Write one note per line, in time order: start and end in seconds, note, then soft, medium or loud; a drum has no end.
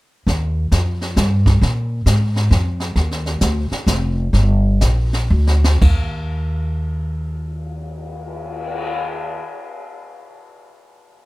0.27 0.70 D#2 medium
0.27 brush sweep soft
0.27 kick soft
0.27 snare soft
0.72 1.15 F2 medium
0.72 kick soft
0.72 snare medium
0.72 hi-hat pedal medium
1.01 snare soft
1.17 1.60 G2 medium
1.17 kick soft
1.17 snare medium
1.17 hi-hat pedal soft
1.46 kick soft
1.46 snare soft
1.61 2.05 A#2 medium
1.61 brush sweep soft
1.61 kick soft
1.61 snare soft
2.06 2.50 G#2 medium
2.06 kick soft
2.06 snare medium
2.06 hi-hat pedal medium
2.36 snare soft
2.51 2.95 F2 medium
2.51 kick soft
2.51 snare soft
2.80 snare soft
2.96 3.40 D#2 medium
2.96 brush sweep soft
2.96 kick soft
2.96 snare soft
3.11 snare soft
3.26 snare soft
3.41 3.69 D2 medium
3.41 kick soft
3.41 snare medium
3.41 hi-hat pedal soft
3.71 muted upright bass stroke soft
3.71 snare soft
3.87 4.32 F1 medium
3.87 kick soft
3.87 snare medium
3.87 hi-hat pedal medium
4.33 4.80 G1 medium
4.33 brush sweep soft
4.33 kick soft
4.33 snare soft
4.81 5.29 A#1 medium
4.81 kick soft
4.81 snare medium
4.81 hi-hat pedal medium
5.13 snare soft
5.30 5.81 D2 medium
5.47 snare medium
5.64 snare medium
5.82 9.39 D#2 medium
5.82 kick soft
5.82 crash medium
6.16 cymbal swell soft